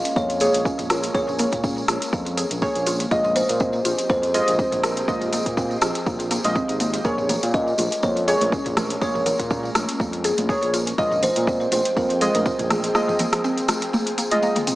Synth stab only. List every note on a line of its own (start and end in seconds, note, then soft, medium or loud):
0.00 0.38 A#3 medium
0.00 0.38 G#4 medium
0.00 0.38 C#5 medium
0.41 1.12 A#3 medium
0.41 1.12 G#4 medium
0.41 1.12 C#5 loud
1.14 2.59 A#3 medium
1.14 2.59 G#4 medium
1.14 2.59 C#5 medium
2.62 2.86 A#3 loud
2.62 2.86 G#4 medium
2.62 2.86 C#5 loud
3.11 4.32 G#3 medium
3.11 4.32 F4 medium
3.11 4.32 D#5 medium
4.34 5.05 G#3 medium
4.34 5.05 F4 medium
4.34 5.05 D#5 loud
5.08 6.42 G#3 medium
5.08 6.42 F4 medium
5.08 6.42 D#5 medium
6.44 7.02 G#3 medium
6.44 7.02 F4 medium
6.44 7.02 D#5 medium
7.05 8.25 A#3 medium
7.05 8.25 G#4 medium
7.05 8.25 C#5 medium
8.28 8.99 A#3 medium
8.28 8.99 G#4 medium
8.28 8.99 C#5 loud
9.01 10.46 A#3 medium
9.01 10.46 G#4 medium
9.01 10.46 C#5 medium
10.49 10.73 A#3 medium
10.49 10.73 G#4 medium
10.49 10.73 C#5 loud
10.98 12.19 G#3 medium
10.98 12.18 F4 medium
10.98 12.19 D#5 medium
12.21 12.92 G#3 medium
12.21 12.92 F4 medium
12.21 12.92 D#5 loud
12.95 14.29 G#3 medium
12.95 14.29 F4 medium
12.95 14.29 D#5 medium
14.31 14.75 G#3 medium
14.31 14.75 F4 medium
14.31 14.75 D#5 medium